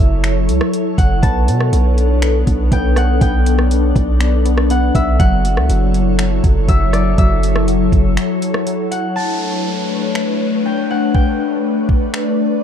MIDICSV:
0, 0, Header, 1, 7, 480
1, 0, Start_track
1, 0, Key_signature, 2, "minor"
1, 0, Tempo, 495868
1, 1191, Time_signature, 4, 2, 24, 8
1, 12231, End_track
2, 0, Start_track
2, 0, Title_t, "Harp"
2, 0, Program_c, 0, 46
2, 0, Note_on_c, 0, 74, 84
2, 0, Note_on_c, 0, 76, 106
2, 820, Note_off_c, 0, 74, 0
2, 937, Note_off_c, 0, 76, 0
2, 947, Note_on_c, 0, 78, 80
2, 1185, Note_on_c, 0, 81, 103
2, 2504, Note_off_c, 0, 78, 0
2, 2588, Note_off_c, 0, 81, 0
2, 2638, Note_on_c, 0, 79, 82
2, 2879, Note_on_c, 0, 78, 84
2, 2937, Note_off_c, 0, 79, 0
2, 3106, Note_on_c, 0, 79, 102
2, 3164, Note_off_c, 0, 78, 0
2, 4556, Note_on_c, 0, 78, 88
2, 4615, Note_off_c, 0, 79, 0
2, 4791, Note_on_c, 0, 76, 75
2, 5024, Note_off_c, 0, 78, 0
2, 5028, Note_on_c, 0, 78, 115
2, 6459, Note_off_c, 0, 76, 0
2, 6472, Note_on_c, 0, 76, 82
2, 6585, Note_off_c, 0, 78, 0
2, 6712, Note_on_c, 0, 74, 86
2, 6948, Note_off_c, 0, 76, 0
2, 6952, Note_on_c, 0, 76, 104
2, 8499, Note_off_c, 0, 74, 0
2, 8620, Note_off_c, 0, 76, 0
2, 8628, Note_on_c, 0, 78, 77
2, 8865, Note_on_c, 0, 81, 96
2, 10184, Note_off_c, 0, 78, 0
2, 10267, Note_off_c, 0, 81, 0
2, 10315, Note_on_c, 0, 79, 74
2, 10557, Note_on_c, 0, 78, 81
2, 10615, Note_off_c, 0, 79, 0
2, 10787, Note_on_c, 0, 79, 92
2, 10845, Note_off_c, 0, 78, 0
2, 12231, Note_off_c, 0, 79, 0
2, 12231, End_track
3, 0, Start_track
3, 0, Title_t, "Ambient pad"
3, 0, Program_c, 1, 92
3, 0, Note_on_c, 1, 54, 83
3, 0, Note_on_c, 1, 64, 75
3, 0, Note_on_c, 1, 69, 78
3, 0, Note_on_c, 1, 73, 94
3, 1152, Note_off_c, 1, 54, 0
3, 1152, Note_off_c, 1, 64, 0
3, 1188, Note_on_c, 1, 59, 86
3, 1188, Note_on_c, 1, 62, 77
3, 3072, Note_off_c, 1, 73, 0
3, 3111, Note_on_c, 1, 74, 98
3, 4991, Note_off_c, 1, 59, 0
3, 4991, Note_off_c, 1, 62, 0
3, 4991, Note_off_c, 1, 69, 0
3, 5012, Note_off_c, 1, 74, 0
3, 5031, Note_on_c, 1, 54, 85
3, 5031, Note_on_c, 1, 64, 77
3, 5031, Note_on_c, 1, 69, 77
3, 5031, Note_on_c, 1, 73, 91
3, 8832, Note_off_c, 1, 54, 0
3, 8832, Note_off_c, 1, 64, 0
3, 8832, Note_off_c, 1, 69, 0
3, 8832, Note_off_c, 1, 73, 0
3, 8869, Note_on_c, 1, 62, 76
3, 8869, Note_on_c, 1, 73, 89
3, 8870, Note_on_c, 1, 57, 80
3, 8871, Note_on_c, 1, 71, 75
3, 10771, Note_off_c, 1, 73, 0
3, 10791, Note_on_c, 1, 74, 91
3, 12231, Note_off_c, 1, 57, 0
3, 12231, Note_off_c, 1, 62, 0
3, 12231, Note_off_c, 1, 71, 0
3, 12231, Note_off_c, 1, 74, 0
3, 12231, End_track
4, 0, Start_track
4, 0, Title_t, "Synth keys"
4, 0, Program_c, 2, 88
4, 1192, Note_on_c, 2, 59, 91
4, 1662, Note_off_c, 2, 59, 0
4, 1674, Note_on_c, 2, 59, 74
4, 2140, Note_off_c, 2, 59, 0
4, 2152, Note_on_c, 2, 59, 70
4, 2381, Note_off_c, 2, 59, 0
4, 2393, Note_on_c, 2, 59, 75
4, 2617, Note_off_c, 2, 59, 0
4, 2629, Note_on_c, 2, 59, 93
4, 2857, Note_off_c, 2, 59, 0
4, 2869, Note_on_c, 2, 59, 73
4, 3095, Note_off_c, 2, 59, 0
4, 3106, Note_on_c, 2, 59, 96
4, 3585, Note_off_c, 2, 59, 0
4, 3596, Note_on_c, 2, 59, 78
4, 4058, Note_off_c, 2, 59, 0
4, 4069, Note_on_c, 2, 59, 73
4, 4298, Note_off_c, 2, 59, 0
4, 4310, Note_on_c, 2, 59, 72
4, 4537, Note_off_c, 2, 59, 0
4, 4549, Note_on_c, 2, 59, 93
4, 4782, Note_off_c, 2, 59, 0
4, 4793, Note_on_c, 2, 59, 78
4, 5032, Note_off_c, 2, 59, 0
4, 5034, Note_on_c, 2, 54, 93
4, 5500, Note_off_c, 2, 54, 0
4, 5512, Note_on_c, 2, 54, 82
4, 5986, Note_off_c, 2, 54, 0
4, 5998, Note_on_c, 2, 54, 73
4, 6218, Note_off_c, 2, 54, 0
4, 6230, Note_on_c, 2, 54, 72
4, 6460, Note_off_c, 2, 54, 0
4, 6471, Note_on_c, 2, 54, 91
4, 6699, Note_off_c, 2, 54, 0
4, 6711, Note_on_c, 2, 54, 78
4, 6941, Note_off_c, 2, 54, 0
4, 6953, Note_on_c, 2, 54, 100
4, 7419, Note_off_c, 2, 54, 0
4, 7430, Note_on_c, 2, 54, 75
4, 7895, Note_off_c, 2, 54, 0
4, 7907, Note_on_c, 2, 54, 75
4, 8137, Note_off_c, 2, 54, 0
4, 8149, Note_on_c, 2, 54, 68
4, 8379, Note_off_c, 2, 54, 0
4, 8391, Note_on_c, 2, 54, 86
4, 8621, Note_off_c, 2, 54, 0
4, 8632, Note_on_c, 2, 54, 72
4, 8871, Note_off_c, 2, 54, 0
4, 12231, End_track
5, 0, Start_track
5, 0, Title_t, "808-style bass"
5, 0, Program_c, 3, 38
5, 0, Note_on_c, 3, 30, 106
5, 472, Note_on_c, 3, 37, 97
5, 486, Note_off_c, 3, 30, 0
5, 585, Note_off_c, 3, 37, 0
5, 950, Note_on_c, 3, 30, 102
5, 1180, Note_off_c, 3, 30, 0
5, 1191, Note_on_c, 3, 35, 109
5, 1431, Note_on_c, 3, 47, 103
5, 1446, Note_off_c, 3, 35, 0
5, 1659, Note_off_c, 3, 47, 0
5, 1672, Note_on_c, 3, 35, 113
5, 2363, Note_off_c, 3, 35, 0
5, 2393, Note_on_c, 3, 35, 101
5, 2622, Note_off_c, 3, 35, 0
5, 2630, Note_on_c, 3, 35, 107
5, 3091, Note_off_c, 3, 35, 0
5, 3110, Note_on_c, 3, 35, 112
5, 3802, Note_off_c, 3, 35, 0
5, 3830, Note_on_c, 3, 35, 112
5, 4752, Note_off_c, 3, 35, 0
5, 4790, Note_on_c, 3, 35, 108
5, 5021, Note_off_c, 3, 35, 0
5, 5031, Note_on_c, 3, 30, 109
5, 5390, Note_on_c, 3, 37, 105
5, 5405, Note_off_c, 3, 30, 0
5, 5505, Note_off_c, 3, 37, 0
5, 5511, Note_on_c, 3, 30, 111
5, 6202, Note_off_c, 3, 30, 0
5, 6233, Note_on_c, 3, 30, 105
5, 6462, Note_off_c, 3, 30, 0
5, 6470, Note_on_c, 3, 30, 111
5, 6931, Note_off_c, 3, 30, 0
5, 6951, Note_on_c, 3, 30, 112
5, 7642, Note_off_c, 3, 30, 0
5, 7671, Note_on_c, 3, 30, 112
5, 7911, Note_off_c, 3, 30, 0
5, 12231, End_track
6, 0, Start_track
6, 0, Title_t, "Downlifter"
6, 0, Program_c, 4, 103
6, 8871, Note_on_c, 4, 60, 81
6, 12231, Note_off_c, 4, 60, 0
6, 12231, End_track
7, 0, Start_track
7, 0, Title_t, "Drums"
7, 230, Note_on_c, 9, 26, 106
7, 231, Note_on_c, 9, 42, 79
7, 327, Note_off_c, 9, 26, 0
7, 328, Note_off_c, 9, 42, 0
7, 473, Note_on_c, 9, 42, 66
7, 569, Note_off_c, 9, 42, 0
7, 590, Note_on_c, 9, 37, 100
7, 687, Note_off_c, 9, 37, 0
7, 711, Note_on_c, 9, 42, 76
7, 808, Note_off_c, 9, 42, 0
7, 950, Note_on_c, 9, 36, 95
7, 954, Note_on_c, 9, 42, 72
7, 1047, Note_off_c, 9, 36, 0
7, 1051, Note_off_c, 9, 42, 0
7, 1191, Note_on_c, 9, 36, 126
7, 1192, Note_on_c, 9, 42, 78
7, 1288, Note_off_c, 9, 36, 0
7, 1289, Note_off_c, 9, 42, 0
7, 1435, Note_on_c, 9, 42, 80
7, 1531, Note_off_c, 9, 42, 0
7, 1554, Note_on_c, 9, 37, 93
7, 1651, Note_off_c, 9, 37, 0
7, 1674, Note_on_c, 9, 42, 77
7, 1771, Note_off_c, 9, 42, 0
7, 1915, Note_on_c, 9, 42, 55
7, 2012, Note_off_c, 9, 42, 0
7, 2151, Note_on_c, 9, 26, 104
7, 2152, Note_on_c, 9, 42, 79
7, 2248, Note_off_c, 9, 26, 0
7, 2249, Note_off_c, 9, 42, 0
7, 2393, Note_on_c, 9, 36, 103
7, 2393, Note_on_c, 9, 42, 67
7, 2489, Note_off_c, 9, 36, 0
7, 2490, Note_off_c, 9, 42, 0
7, 2630, Note_on_c, 9, 36, 86
7, 2631, Note_on_c, 9, 42, 75
7, 2727, Note_off_c, 9, 36, 0
7, 2728, Note_off_c, 9, 42, 0
7, 2869, Note_on_c, 9, 37, 88
7, 2873, Note_on_c, 9, 42, 76
7, 2965, Note_off_c, 9, 37, 0
7, 2969, Note_off_c, 9, 42, 0
7, 3111, Note_on_c, 9, 36, 124
7, 3111, Note_on_c, 9, 42, 81
7, 3208, Note_off_c, 9, 36, 0
7, 3208, Note_off_c, 9, 42, 0
7, 3353, Note_on_c, 9, 42, 79
7, 3450, Note_off_c, 9, 42, 0
7, 3472, Note_on_c, 9, 37, 90
7, 3568, Note_off_c, 9, 37, 0
7, 3592, Note_on_c, 9, 42, 75
7, 3689, Note_off_c, 9, 42, 0
7, 3830, Note_on_c, 9, 36, 90
7, 3834, Note_on_c, 9, 42, 56
7, 3927, Note_off_c, 9, 36, 0
7, 3931, Note_off_c, 9, 42, 0
7, 4071, Note_on_c, 9, 26, 107
7, 4071, Note_on_c, 9, 42, 78
7, 4168, Note_off_c, 9, 26, 0
7, 4168, Note_off_c, 9, 42, 0
7, 4313, Note_on_c, 9, 42, 66
7, 4410, Note_off_c, 9, 42, 0
7, 4429, Note_on_c, 9, 37, 104
7, 4526, Note_off_c, 9, 37, 0
7, 4551, Note_on_c, 9, 42, 76
7, 4648, Note_off_c, 9, 42, 0
7, 4790, Note_on_c, 9, 36, 98
7, 4793, Note_on_c, 9, 42, 76
7, 4887, Note_off_c, 9, 36, 0
7, 4890, Note_off_c, 9, 42, 0
7, 5031, Note_on_c, 9, 36, 122
7, 5031, Note_on_c, 9, 42, 83
7, 5128, Note_off_c, 9, 36, 0
7, 5128, Note_off_c, 9, 42, 0
7, 5274, Note_on_c, 9, 42, 80
7, 5371, Note_off_c, 9, 42, 0
7, 5394, Note_on_c, 9, 37, 94
7, 5491, Note_off_c, 9, 37, 0
7, 5513, Note_on_c, 9, 42, 76
7, 5610, Note_off_c, 9, 42, 0
7, 5753, Note_on_c, 9, 42, 53
7, 5850, Note_off_c, 9, 42, 0
7, 5989, Note_on_c, 9, 26, 108
7, 5990, Note_on_c, 9, 42, 80
7, 6086, Note_off_c, 9, 26, 0
7, 6087, Note_off_c, 9, 42, 0
7, 6233, Note_on_c, 9, 36, 105
7, 6233, Note_on_c, 9, 42, 65
7, 6330, Note_off_c, 9, 36, 0
7, 6330, Note_off_c, 9, 42, 0
7, 6471, Note_on_c, 9, 36, 91
7, 6471, Note_on_c, 9, 42, 75
7, 6567, Note_off_c, 9, 36, 0
7, 6568, Note_off_c, 9, 42, 0
7, 6710, Note_on_c, 9, 37, 89
7, 6714, Note_on_c, 9, 42, 74
7, 6807, Note_off_c, 9, 37, 0
7, 6811, Note_off_c, 9, 42, 0
7, 6952, Note_on_c, 9, 36, 126
7, 6952, Note_on_c, 9, 42, 79
7, 7048, Note_off_c, 9, 36, 0
7, 7049, Note_off_c, 9, 42, 0
7, 7196, Note_on_c, 9, 42, 80
7, 7292, Note_off_c, 9, 42, 0
7, 7314, Note_on_c, 9, 37, 96
7, 7411, Note_off_c, 9, 37, 0
7, 7434, Note_on_c, 9, 42, 76
7, 7530, Note_off_c, 9, 42, 0
7, 7670, Note_on_c, 9, 36, 93
7, 7674, Note_on_c, 9, 42, 54
7, 7767, Note_off_c, 9, 36, 0
7, 7771, Note_off_c, 9, 42, 0
7, 7911, Note_on_c, 9, 26, 108
7, 7911, Note_on_c, 9, 42, 80
7, 8007, Note_off_c, 9, 26, 0
7, 8008, Note_off_c, 9, 42, 0
7, 8152, Note_on_c, 9, 42, 68
7, 8249, Note_off_c, 9, 42, 0
7, 8269, Note_on_c, 9, 37, 101
7, 8366, Note_off_c, 9, 37, 0
7, 8390, Note_on_c, 9, 42, 74
7, 8486, Note_off_c, 9, 42, 0
7, 8632, Note_on_c, 9, 42, 73
7, 8729, Note_off_c, 9, 42, 0
7, 9828, Note_on_c, 9, 26, 100
7, 9924, Note_off_c, 9, 26, 0
7, 10789, Note_on_c, 9, 36, 112
7, 10886, Note_off_c, 9, 36, 0
7, 11509, Note_on_c, 9, 36, 92
7, 11606, Note_off_c, 9, 36, 0
7, 11749, Note_on_c, 9, 26, 102
7, 11846, Note_off_c, 9, 26, 0
7, 12231, End_track
0, 0, End_of_file